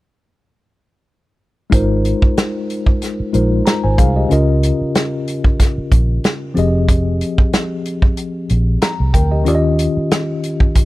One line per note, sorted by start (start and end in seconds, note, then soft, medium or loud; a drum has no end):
1.70 2.12 G#1 medium
1.70 3.29 G#3 medium
1.70 3.30 D#4 medium
1.70 3.30 F4 medium
1.70 3.31 A#4 medium
1.70 kick loud
1.70 closed hi-hat medium
1.74 3.32 C5 medium
2.05 closed hi-hat medium
2.22 muted fingered electric bass stroke soft
2.22 kick medium
2.37 snare loud
2.37 closed hi-hat medium
2.70 closed hi-hat medium
2.86 kick medium
3.02 snare soft
3.02 closed hi-hat medium
3.20 muted fingered electric bass stroke soft
3.33 3.60 A#1 medium
3.33 4.30 G#3 soft
3.33 4.30 D#4 soft
3.33 4.30 F4 soft
3.33 3.66 A#4 soft
3.33 3.67 C5 medium
3.33 closed hi-hat medium
3.66 3.82 A#5 medium
3.66 snare medium
3.66 closed hi-hat medium
3.84 4.00 G#1 medium
3.84 3.98 C5 medium
3.84 3.98 G#5 medium
3.98 4.24 C2 medium
3.98 4.15 G#4 medium
3.98 4.15 F5 medium
3.98 kick medium
3.98 closed hi-hat medium
4.16 4.47 G4 soft
4.16 4.32 D#5 medium
4.29 4.71 C#2 loud
4.29 6.51 C#3 medium
4.29 6.52 C#4 medium
4.29 6.52 F4 medium
4.29 6.53 A#4 medium
4.29 closed hi-hat medium
4.33 6.53 D#5 medium
4.63 closed hi-hat medium
4.81 muted fingered electric bass stroke soft
4.95 snare medium
4.95 closed hi-hat medium
5.28 closed hi-hat medium
5.44 kick medium
5.60 kick medium
5.60 snare soft
5.60 closed hi-hat medium
5.78 muted fingered electric bass stroke soft
5.92 6.18 A#1 medium
5.92 kick medium
5.92 closed hi-hat medium
6.24 snare medium
6.24 closed hi-hat medium
6.54 7.22 F1 medium
6.54 9.09 F3 medium
6.54 9.10 C4 medium
6.54 8.78 G4 medium
6.54 8.79 G#4 medium
6.54 closed hi-hat medium
6.59 8.79 D#5 medium
6.88 kick medium
6.88 closed hi-hat medium
7.21 closed hi-hat medium
7.38 muted fingered electric bass stroke soft
7.38 kick medium
7.53 snare medium
7.53 closed hi-hat medium
7.86 closed hi-hat medium
8.02 kick medium
8.17 closed hi-hat medium
8.50 8.76 A#1 medium
8.50 closed hi-hat medium
8.82 9.13 A#5 medium
8.82 snare loud
8.82 closed hi-hat medium
9.00 9.12 C2 medium
9.14 9.47 D2 medium
9.14 9.31 A#4 medium
9.14 9.30 G5 medium
9.14 kick medium
9.14 closed hi-hat medium
9.31 9.46 G4 soft
9.31 9.54 D#5 medium
9.44 9.87 D#2 medium
9.44 10.85 D#3 medium
9.44 10.85 C#4 medium
9.44 10.85 F4 medium
9.44 10.85 G4 medium
9.44 closed hi-hat medium
9.49 9.54 D5 medium
9.55 10.85 D#5 medium
9.79 closed hi-hat medium
9.97 muted fingered electric bass stroke soft
10.11 snare loud
10.11 closed hi-hat medium
10.44 closed hi-hat medium
10.60 kick medium
10.75 kick medium
10.75 closed hi-hat medium